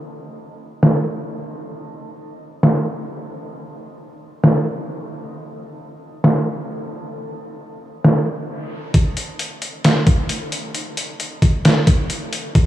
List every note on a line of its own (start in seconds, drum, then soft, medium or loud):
0.83 snare loud
2.63 snare loud
4.44 snare loud
6.24 snare loud
8.04 snare loud
8.94 kick loud
8.94 closed hi-hat medium
9.17 closed hi-hat medium
9.39 closed hi-hat medium
9.62 closed hi-hat medium
9.84 snare loud
9.84 closed hi-hat medium
10.07 kick loud
10.07 closed hi-hat medium
10.29 closed hi-hat medium
10.52 closed hi-hat medium
10.75 closed hi-hat medium
10.97 closed hi-hat medium
11.20 closed hi-hat medium
11.42 kick medium
11.42 closed hi-hat medium
11.65 snare loud
11.65 closed hi-hat medium
11.87 kick loud
11.87 closed hi-hat medium
12.10 closed hi-hat medium
12.33 closed hi-hat medium
12.55 kick loud
12.55 closed hi-hat medium